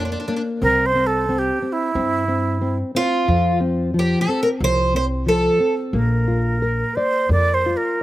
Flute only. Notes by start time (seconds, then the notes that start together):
0.62 A#4
0.86 C5
1.07 A4
1.39 G4
1.72 E4
5.95 A#4
6.95 C5
7.32 D5
7.54 C5
7.77 A#4